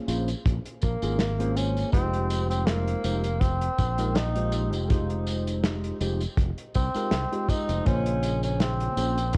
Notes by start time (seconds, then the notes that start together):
0.08 A#1 A#3 C#4 F4 G#4 C5, closed hi-hat, tambourine
0.28 closed hi-hat, tambourine
0.46 A#1, kick, closed hi-hat, tambourine
0.65 closed hi-hat
0.82 A#1 A#3, kick, closed hi-hat, tambourine
1.02 G#1 A#3 C#4 F4 G#4 A#4, closed hi-hat, tambourine
1.19 snare, closed hi-hat, tambourine
1.39 A#3 C#4 F4 G#4 C5, closed hi-hat
1.57 C#4, closed hi-hat, tambourine
1.77 closed hi-hat, tambourine
1.92 F1 G#3 C4 D#4 F4 G4 C5, kick, closed hi-hat, tambourine
2.14 closed hi-hat
2.30 closed hi-hat, tambourine
2.50 C4, closed hi-hat, tambourine
2.67 A#3, snare, closed hi-hat, tambourine
2.88 closed hi-hat
3.04 F1 G#3 D#4 F4 G4 C5, closed hi-hat, tambourine
3.24 closed hi-hat, tambourine
3.41 C4, kick, closed hi-hat, tambourine
3.62 closed hi-hat
3.79 A#1, kick, closed hi-hat, tambourine
3.98 G#3 D#4 F4 G4 A#4, closed hi-hat, tambourine
4.15 D#4, snare, closed hi-hat, tambourine
4.35 G#3 D#4 F4 G4 C5, closed hi-hat
4.52 closed hi-hat, tambourine
4.73 F1, closed hi-hat, tambourine
4.88 G#3 D#4 F4 G4 C5, kick, closed hi-hat, tambourine
5.10 closed hi-hat
5.27 closed hi-hat, tambourine
5.47 closed hi-hat, tambourine
5.64 snare, closed hi-hat, tambourine
5.84 closed hi-hat
6.00 F1 G#3 D#4 F4 G4 C5, closed hi-hat, tambourine
6.20 closed hi-hat, tambourine
6.37 F1, kick, closed hi-hat, tambourine
6.58 closed hi-hat
6.74 C2 C4, kick, closed hi-hat, tambourine
6.94 G#3 D#4 F4 G4 A#4, muted fingered electric bass stroke, closed hi-hat, tambourine
7.11 C2, snare, closed hi-hat, tambourine
7.31 G#3 D#4 F4 G4 C5, closed hi-hat
7.48 D#4, kick, closed hi-hat, tambourine
7.69 F1, closed hi-hat, tambourine
7.84 A#1 C#3 A#3 C#4 F4 G#4 C5, kick, closed hi-hat, tambourine
8.06 closed hi-hat
8.23 closed hi-hat, tambourine
8.43 C#4, closed hi-hat, tambourine
8.60 C4, snare, closed hi-hat, tambourine
8.80 closed hi-hat
8.97 A#1 A#3 C#4 F4 G#4 C5, closed hi-hat, tambourine
9.18 closed hi-hat, tambourine
9.33 closed hi-hat, tambourine